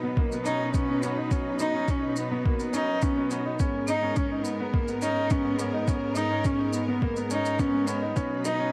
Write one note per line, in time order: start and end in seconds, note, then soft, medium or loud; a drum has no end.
0.00 3.56 B2 medium
0.00 3.56 F#3 medium
0.00 0.17 B3 medium
0.00 0.14 B3 medium
0.00 3.56 D#4 medium
0.00 3.56 B4 medium
0.17 0.29 A#3 medium
0.17 kick medium
0.32 0.43 B3 medium
0.32 shaker soft
0.45 0.68 C#4 medium
0.45 0.72 D#4 medium
0.45 shaker medium
0.74 0.85 B3 medium
0.74 1.06 C#4 medium
0.74 kick medium
0.74 shaker soft
0.89 1.00 B3 medium
1.03 1.32 B3 medium
1.03 1.14 C#4 medium
1.03 shaker medium
1.17 1.28 D#4 medium
1.31 1.53 C#4 medium
1.31 kick medium
1.31 shaker soft
1.59 1.71 D#4 medium
1.59 1.92 D#4 loud
1.59 shaker medium
1.74 1.85 C#4 medium
1.88 2.00 C#4 medium
1.88 2.21 C#4 medium
1.88 kick loud
1.88 shaker soft
2.02 2.25 D#4 medium
2.16 2.47 B3 medium
2.16 shaker medium
2.32 2.43 B3 medium
2.45 2.57 A#3 medium
2.45 kick loud
2.59 2.71 B3 medium
2.59 shaker soft
2.73 2.96 C#4 medium
2.73 3.04 D#4 medium
2.73 shaker medium
3.02 3.14 B3 medium
3.02 3.33 C#4 medium
3.02 kick loud
3.02 shaker soft
3.17 3.28 B3 medium
3.31 3.60 B3 medium
3.31 3.42 C#4 medium
3.31 shaker medium
3.46 3.57 D#4 medium
3.59 8.13 G#2 medium
3.59 8.13 G#3 medium
3.59 8.13 B3 medium
3.59 3.82 C#4 medium
3.59 8.13 A#4 medium
3.59 kick loud
3.59 shaker soft
3.88 3.99 D#4 medium
3.88 4.18 D#4 loud
3.88 shaker medium
4.03 4.14 C#4 medium
4.16 4.45 C#4 medium
4.16 4.28 C#4 medium
4.16 kick loud
4.16 shaker soft
4.32 4.54 D#4 medium
4.44 4.73 B3 medium
4.44 shaker medium
4.60 4.71 B3 medium
4.74 4.85 A#3 medium
4.74 kick loud
4.88 5.00 B3 medium
4.88 shaker soft
5.02 5.25 C#4 medium
5.02 5.33 D#4 medium
5.02 shaker medium
5.30 5.42 B3 medium
5.30 5.60 C#4 loud
5.30 kick loud
5.30 shaker soft
5.45 5.56 B3 medium
5.59 5.88 B3 medium
5.59 5.70 C#4 medium
5.59 shaker medium
5.74 5.85 D#4 medium
5.88 6.10 C#4 medium
5.88 kick loud
5.88 shaker soft
6.16 6.47 D#4 loud
6.16 6.28 D#4 medium
6.16 shaker medium
6.31 6.42 C#4 medium
6.45 6.76 C#4 medium
6.45 6.57 C#4 medium
6.45 kick loud
6.45 shaker soft
6.59 6.82 D#4 medium
6.73 7.03 B3 medium
6.73 shaker medium
6.88 6.99 B3 medium
7.02 7.14 A#3 medium
7.02 kick loud
7.16 7.28 B3 medium
7.16 shaker soft
7.31 7.53 C#4 medium
7.31 7.61 D#4 medium
7.31 shaker medium
7.45 shaker soft
7.59 7.71 B3 medium
7.59 7.90 C#4 loud
7.59 kick medium
7.59 shaker soft
7.74 7.85 B3 medium
7.87 8.17 B3 medium
7.87 7.99 C#4 medium
7.87 shaker medium
8.02 8.13 D#4 medium
8.16 8.72 B2 medium
8.16 8.72 F#3 medium
8.16 8.39 C#4 medium
8.16 8.72 D#4 medium
8.16 8.72 B4 medium
8.16 kick loud
8.16 shaker soft
8.45 8.56 D#4 medium
8.45 8.72 D#4 medium
8.45 shaker medium
8.59 8.71 C#4 medium